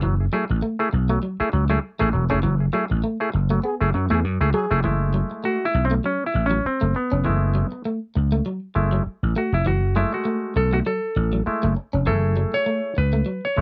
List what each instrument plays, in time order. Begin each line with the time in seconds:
0.02 slap bass F#1, clean electric guitar E3, clav F#3
0.20 clav E4 G#4
0.33 clean electric guitar F#3, clav A3 E4 G#4
0.50 slap bass A1, muted clean electric guitar stroke
0.62 clean electric guitar A3
0.79 clav A3 E4 G#4
0.93 slap bass B1, muted clean electric guitar stroke
1.09 clav F#3, clean electric guitar A3
1.23 clean electric guitar F#3
1.40 clav A3 E4 G#4, muted slap bass stroke
1.53 slap bass C#2, clav F#3, muted clean electric guitar stroke
1.70 clean electric guitar F#3, clav A3 E4 G#4
1.99 slap bass A1, clean electric guitar A3, clav A3 E4 G#4
2.13 slap bass E1, clav F#3, muted clean electric guitar stroke
2.30 slap bass F1, clav A3 E4 G#4, clean electric guitar C#4
2.43 slap bass F#1, clean electric guitar E3, clav F#3
2.60 clav E4 G#4
2.73 clean electric guitar F#3, clav A3 E4 G#4
2.90 slap bass A1, muted clean electric guitar stroke
3.04 clean electric guitar A3
3.20 clav A3 E4 G#4
3.34 slap bass F#1, muted clean electric guitar stroke
3.50 clav F#3, clean electric guitar A3
3.64 clean electric guitar B3, trombone G#4
3.81 slap bass F#1, clav A3 E4 G#4
3.94 slap bass F#2, clav F#3, muted clean electric guitar stroke
4.10 slap bass E2, clean electric guitar A3, clav A3 E4 G#4, trombone G#4
4.25 slap bass F#2
4.41 slap bass C#2, clav A3 E4 G#4
4.54 clean electric guitar F#3, clav F#3, trombone G#4
4.71 slap bass F1, clav A3 E4 G#4
4.84 slap bass F#1, clean electric guitar E3, clav G#3 A3 E4
5.14 clean electric guitar F#3
5.31 muted clean electric guitar stroke
5.44 clean electric guitar A3, clav F#4
5.65 clav E4
5.75 slap bass B1, muted clean electric guitar stroke
5.85 clav C4
5.91 clean electric guitar A3
6.04 clean electric guitar F#3, clav C#4
6.26 clav E4
6.34 slap bass A1, muted clean electric guitar stroke
6.46 clav C#4
6.51 clean electric guitar F#3
6.65 clav C4, muted slap bass stroke
6.81 slap bass F#1, clean electric guitar A3
6.95 clav B3, muted clean electric guitar stroke
7.12 slap bass F1, clean electric guitar C#4
7.24 slap bass F#1, clean electric guitar E3, clav G#3 A3 E4
7.55 clean electric guitar F#3
7.72 muted clean electric guitar stroke
7.85 clean electric guitar A3
8.16 slap bass C#2, muted clean electric guitar stroke
8.32 clean electric guitar A3
8.46 clean electric guitar F#3
8.75 slap bass F#1, clav G#3 A3 E4, muted clean electric guitar stroke
8.93 clean electric guitar F#3
9.06 muted slap bass stroke
9.23 slap bass A1
9.36 clean electric guitar A3, clav F#4
9.52 slap bass F1, clav E4
9.66 slap bass F#1, clean electric guitar E3, clav F#4
9.96 clean electric guitar F#3, clav G#3 A3 E4
10.13 clav F#4, muted clean electric guitar stroke
10.25 clean electric guitar A3
10.56 slap bass B1, clav A4, muted clean electric guitar stroke
10.73 clean electric guitar A3, clav F#4
10.86 clean electric guitar F#3, clav A4
11.16 slap bass A1, muted clean electric guitar stroke
11.33 clean electric guitar F#3
11.46 clav G#3 A3 E4, muted slap bass stroke
11.63 slap bass F#1, clean electric guitar A3
11.77 muted clean electric guitar stroke
11.93 slap bass F1, clean electric guitar C#4
12.06 slap bass F#1, clean electric guitar E3, clav A3 E4 G#4 A4
12.37 clean electric guitar F#3
12.54 clav C#5, muted clean electric guitar stroke
12.66 clean electric guitar A3
12.97 slap bass C#2, clav B4, muted clean electric guitar stroke
13.13 clean electric guitar A3
13.26 clean electric guitar F#3
13.45 clav C#5
13.57 slap bass F#1, clav G#3 A3 E4, muted clean electric guitar stroke